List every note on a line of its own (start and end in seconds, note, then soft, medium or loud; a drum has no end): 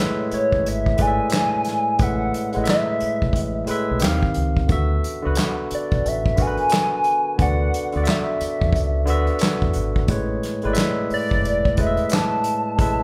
0.00 0.96 A2 medium
0.00 0.98 G#3 medium
0.00 1.00 B4 medium
0.00 4.04 C#5 medium
0.00 0.90 E5 loud
0.31 0.70 C#5 medium
0.31 muted fingered electric bass stroke soft
0.31 closed hi-hat medium
0.52 0.66 A1 medium
0.52 kick medium
0.66 0.95 G#1 medium
0.66 1.03 E5 loud
0.66 closed hi-hat medium
0.86 kick medium
0.96 1.18 G#1 medium
0.96 1.90 A2 medium
0.96 1.91 G#3 medium
0.96 1.91 B4 medium
0.96 kick medium
0.96 closed hi-hat medium
1.01 1.08 D5 medium
1.01 2.05 G#5 loud
1.07 1.95 E5 medium
1.30 snare loud
1.30 clap medium
1.30 closed hi-hat medium
1.65 snare soft
1.65 closed hi-hat medium
1.98 2.30 A1 loud
1.98 2.46 A2 medium
1.98 2.47 G#3 medium
1.98 2.47 B4 medium
1.98 kick loud
1.98 closed hi-hat medium
2.02 2.48 E5 medium
2.02 2.69 F#5 loud
2.34 closed hi-hat medium
2.53 2.67 A1 medium
2.53 3.57 A2 medium
2.53 3.58 G#3 medium
2.53 3.58 B4 medium
2.53 closed hi-hat soft
2.58 2.61 D#5 medium
2.64 3.62 E5 medium
2.64 closed hi-hat medium
2.68 3.99 E5 medium
2.68 snare loud
2.68 clap medium
3.00 muted fingered electric bass stroke soft
3.00 closed hi-hat medium
3.22 3.33 B1 medium
3.22 kick medium
3.33 3.64 A1 loud
3.33 kick medium
3.33 closed hi-hat medium
3.66 4.01 A2 medium
3.66 4.02 G#3 medium
3.66 4.02 B4 medium
3.66 muted fingered electric bass stroke soft
3.66 closed hi-hat medium
3.71 4.03 E5 medium
3.91 4.01 B1 medium
4.00 4.22 D#2 loud
4.00 4.62 D#3 medium
4.00 4.63 C4 medium
4.00 4.64 G4 medium
4.00 snare loud
4.00 clap loud
4.00 closed hi-hat medium
4.05 4.65 F5 medium
4.23 kick medium
4.34 4.66 C#2 medium
4.34 closed hi-hat medium
4.57 kick medium
4.67 5.00 D2 loud
4.67 5.16 D3 medium
4.67 5.16 B3 medium
4.67 5.17 F#4 medium
4.67 kick loud
4.67 closed hi-hat medium
4.72 5.18 E5 loud
5.04 closed hi-hat medium
5.22 5.36 C#2 medium
5.22 6.26 D3 medium
5.22 6.27 B3 medium
5.22 6.28 F#4 medium
5.27 6.28 B4 medium
5.35 snare loud
5.35 clap medium
5.35 closed hi-hat loud
5.71 6.10 D5 medium
5.71 muted fingered electric bass stroke soft
5.71 closed hi-hat medium
5.91 6.03 B1 medium
5.91 kick medium
5.91 closed hi-hat soft
6.06 6.35 A1 loud
6.06 6.43 E5 loud
6.06 closed hi-hat medium
6.26 kick medium
6.36 6.58 A1 medium
6.36 7.29 D3 medium
6.36 7.30 B3 medium
6.36 7.31 F#4 medium
6.36 kick medium
6.36 closed hi-hat medium
6.40 6.47 A#4 medium
6.40 7.41 G#5 loud
6.47 7.35 B4 medium
6.57 closed hi-hat soft
6.70 snare loud
6.70 clap loud
6.70 closed hi-hat medium
7.04 closed hi-hat medium
7.38 7.69 D2 loud
7.38 7.86 D3 medium
7.38 7.86 B3 medium
7.38 7.87 F#4 medium
7.38 kick loud
7.38 closed hi-hat medium
7.42 7.88 D5 medium
7.42 8.11 F#5 loud
7.74 closed hi-hat medium
7.92 8.06 D2 medium
7.92 8.96 D3 medium
7.92 8.97 B3 medium
7.92 8.98 F#4 medium
7.92 closed hi-hat soft
7.97 8.00 D5 medium
8.04 9.02 E5 medium
8.04 closed hi-hat loud
8.08 9.43 E5 medium
8.08 snare medium
8.08 clap medium
8.41 muted fingered electric bass stroke medium
8.41 closed hi-hat medium
8.61 8.73 E2 medium
8.61 kick medium
8.73 9.09 C#2 loud
8.73 kick medium
8.73 closed hi-hat medium
9.05 9.27 D2 medium
9.05 9.99 D3 loud
9.05 9.99 B3 medium
9.05 10.00 F#4 medium
9.05 closed hi-hat medium
9.10 10.01 E5 loud
9.27 closed hi-hat soft
9.39 snare loud
9.39 clap loud
9.39 closed hi-hat medium
9.62 9.73 E2 medium
9.62 kick medium
9.73 10.09 G#1 medium
9.73 closed hi-hat medium
9.96 kick medium
10.07 10.39 A1 loud
10.07 10.55 A2 medium
10.07 10.56 G#3 medium
10.07 10.57 B4 medium
10.07 kick loud
10.07 closed hi-hat medium
10.12 10.57 C#5 medium
10.43 snare soft
10.43 closed hi-hat medium
10.62 10.75 G#1 medium
10.62 11.66 A2 medium
10.62 11.67 G#3 medium
10.62 11.67 B4 medium
10.62 closed hi-hat soft
10.67 10.70 D5 medium
10.73 11.71 E5 loud
10.73 closed hi-hat medium
10.77 snare loud
10.77 clap medium
11.10 11.82 D5 medium
11.10 muted fingered electric bass stroke soft
11.10 open hi-hat medium
11.31 11.45 F#1 medium
11.31 kick medium
11.45 11.74 E1 loud
11.45 closed hi-hat medium
11.65 kick medium
11.76 11.97 E1 medium
11.76 12.69 A2 medium
11.76 12.69 G#3 medium
11.76 12.70 B4 medium
11.76 kick medium
11.76 closed hi-hat medium
11.80 11.87 D#5 medium
11.80 12.15 E5 loud
11.87 12.74 E5 medium
11.97 closed hi-hat soft
12.09 snare loud
12.09 clap loud
12.09 closed hi-hat loud
12.14 13.03 A5 loud
12.44 closed hi-hat medium
12.77 13.03 A1 loud
12.77 13.03 A2 medium
12.77 13.03 G#3 medium
12.77 13.03 B4 medium
12.77 kick loud
12.77 closed hi-hat medium
12.81 13.03 E5 medium